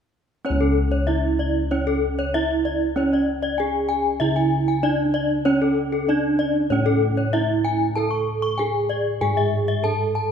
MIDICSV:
0, 0, Header, 1, 4, 480
1, 0, Start_track
1, 0, Tempo, 625000
1, 352, Time_signature, 4, 2, 24, 8
1, 7923, End_track
2, 0, Start_track
2, 0, Title_t, "Bronze metallophone"
2, 0, Program_c, 0, 11
2, 352, Note_on_c, 0, 73, 62
2, 465, Note_on_c, 0, 69, 51
2, 472, Note_off_c, 0, 73, 0
2, 588, Note_off_c, 0, 69, 0
2, 702, Note_on_c, 0, 73, 59
2, 821, Note_on_c, 0, 76, 57
2, 827, Note_off_c, 0, 73, 0
2, 946, Note_off_c, 0, 76, 0
2, 1070, Note_on_c, 0, 74, 54
2, 1191, Note_off_c, 0, 74, 0
2, 1314, Note_on_c, 0, 73, 57
2, 1433, Note_off_c, 0, 73, 0
2, 1436, Note_on_c, 0, 69, 55
2, 1554, Note_off_c, 0, 69, 0
2, 1679, Note_on_c, 0, 73, 58
2, 1796, Note_off_c, 0, 73, 0
2, 1800, Note_on_c, 0, 76, 79
2, 1916, Note_off_c, 0, 76, 0
2, 2037, Note_on_c, 0, 74, 57
2, 2154, Note_off_c, 0, 74, 0
2, 2282, Note_on_c, 0, 73, 58
2, 2397, Note_off_c, 0, 73, 0
2, 2406, Note_on_c, 0, 74, 51
2, 2519, Note_off_c, 0, 74, 0
2, 2631, Note_on_c, 0, 74, 65
2, 2749, Note_on_c, 0, 80, 51
2, 2751, Note_off_c, 0, 74, 0
2, 2870, Note_off_c, 0, 80, 0
2, 2984, Note_on_c, 0, 80, 68
2, 3108, Note_off_c, 0, 80, 0
2, 3224, Note_on_c, 0, 76, 65
2, 3348, Note_off_c, 0, 76, 0
2, 3349, Note_on_c, 0, 80, 55
2, 3470, Note_off_c, 0, 80, 0
2, 3594, Note_on_c, 0, 80, 46
2, 3711, Note_on_c, 0, 74, 66
2, 3713, Note_off_c, 0, 80, 0
2, 3831, Note_off_c, 0, 74, 0
2, 3947, Note_on_c, 0, 74, 68
2, 4069, Note_off_c, 0, 74, 0
2, 4187, Note_on_c, 0, 73, 71
2, 4309, Note_off_c, 0, 73, 0
2, 4314, Note_on_c, 0, 69, 48
2, 4433, Note_off_c, 0, 69, 0
2, 4550, Note_on_c, 0, 69, 51
2, 4671, Note_off_c, 0, 69, 0
2, 4674, Note_on_c, 0, 74, 50
2, 4793, Note_off_c, 0, 74, 0
2, 4907, Note_on_c, 0, 74, 67
2, 5029, Note_off_c, 0, 74, 0
2, 5148, Note_on_c, 0, 73, 59
2, 5267, Note_on_c, 0, 69, 65
2, 5270, Note_off_c, 0, 73, 0
2, 5390, Note_off_c, 0, 69, 0
2, 5509, Note_on_c, 0, 73, 57
2, 5630, Note_off_c, 0, 73, 0
2, 5630, Note_on_c, 0, 76, 74
2, 5751, Note_off_c, 0, 76, 0
2, 5872, Note_on_c, 0, 80, 61
2, 5992, Note_off_c, 0, 80, 0
2, 6110, Note_on_c, 0, 81, 59
2, 6226, Note_on_c, 0, 85, 47
2, 6231, Note_off_c, 0, 81, 0
2, 6349, Note_off_c, 0, 85, 0
2, 6470, Note_on_c, 0, 85, 62
2, 6587, Note_on_c, 0, 80, 55
2, 6591, Note_off_c, 0, 85, 0
2, 6709, Note_off_c, 0, 80, 0
2, 6831, Note_on_c, 0, 74, 61
2, 6951, Note_off_c, 0, 74, 0
2, 7075, Note_on_c, 0, 80, 60
2, 7193, Note_off_c, 0, 80, 0
2, 7197, Note_on_c, 0, 76, 57
2, 7314, Note_off_c, 0, 76, 0
2, 7435, Note_on_c, 0, 76, 56
2, 7553, Note_off_c, 0, 76, 0
2, 7556, Note_on_c, 0, 81, 64
2, 7674, Note_off_c, 0, 81, 0
2, 7797, Note_on_c, 0, 81, 62
2, 7914, Note_off_c, 0, 81, 0
2, 7923, End_track
3, 0, Start_track
3, 0, Title_t, "Bronze metallophone"
3, 0, Program_c, 1, 11
3, 343, Note_on_c, 1, 61, 61
3, 827, Note_off_c, 1, 61, 0
3, 831, Note_on_c, 1, 64, 54
3, 1311, Note_off_c, 1, 64, 0
3, 1316, Note_on_c, 1, 61, 61
3, 1794, Note_off_c, 1, 61, 0
3, 1805, Note_on_c, 1, 64, 60
3, 2273, Note_on_c, 1, 61, 62
3, 2278, Note_off_c, 1, 64, 0
3, 2753, Note_off_c, 1, 61, 0
3, 2763, Note_on_c, 1, 68, 61
3, 3235, Note_on_c, 1, 64, 67
3, 3238, Note_off_c, 1, 68, 0
3, 3710, Note_on_c, 1, 62, 59
3, 3713, Note_off_c, 1, 64, 0
3, 4191, Note_off_c, 1, 62, 0
3, 4191, Note_on_c, 1, 61, 73
3, 4672, Note_off_c, 1, 61, 0
3, 4677, Note_on_c, 1, 62, 71
3, 5154, Note_off_c, 1, 62, 0
3, 5163, Note_on_c, 1, 61, 70
3, 5635, Note_on_c, 1, 64, 64
3, 5637, Note_off_c, 1, 61, 0
3, 6113, Note_off_c, 1, 64, 0
3, 6126, Note_on_c, 1, 69, 58
3, 6599, Note_off_c, 1, 69, 0
3, 6600, Note_on_c, 1, 68, 66
3, 7068, Note_off_c, 1, 68, 0
3, 7078, Note_on_c, 1, 68, 72
3, 7553, Note_on_c, 1, 69, 52
3, 7555, Note_off_c, 1, 68, 0
3, 7923, Note_off_c, 1, 69, 0
3, 7923, End_track
4, 0, Start_track
4, 0, Title_t, "Kettle gongs"
4, 0, Program_c, 2, 14
4, 344, Note_on_c, 2, 61, 56
4, 385, Note_on_c, 2, 37, 74
4, 823, Note_on_c, 2, 62, 29
4, 885, Note_off_c, 2, 62, 0
4, 1757, Note_off_c, 2, 61, 0
4, 1796, Note_on_c, 2, 62, 27
4, 1857, Note_off_c, 2, 62, 0
4, 2276, Note_on_c, 2, 61, 53
4, 2749, Note_on_c, 2, 62, 33
4, 2810, Note_off_c, 2, 62, 0
4, 3217, Note_off_c, 2, 37, 0
4, 3229, Note_on_c, 2, 49, 54
4, 3683, Note_off_c, 2, 61, 0
4, 3710, Note_on_c, 2, 62, 34
4, 3772, Note_off_c, 2, 62, 0
4, 4188, Note_on_c, 2, 61, 52
4, 4640, Note_off_c, 2, 49, 0
4, 4661, Note_on_c, 2, 62, 31
4, 4723, Note_off_c, 2, 62, 0
4, 5147, Note_on_c, 2, 45, 54
4, 5599, Note_off_c, 2, 61, 0
4, 5638, Note_on_c, 2, 62, 31
4, 5700, Note_off_c, 2, 62, 0
4, 6116, Note_on_c, 2, 69, 57
4, 6559, Note_off_c, 2, 45, 0
4, 6602, Note_on_c, 2, 62, 32
4, 6663, Note_off_c, 2, 62, 0
4, 7074, Note_on_c, 2, 44, 59
4, 7523, Note_off_c, 2, 69, 0
4, 7564, Note_on_c, 2, 62, 31
4, 7626, Note_off_c, 2, 62, 0
4, 7923, Note_off_c, 2, 44, 0
4, 7923, End_track
0, 0, End_of_file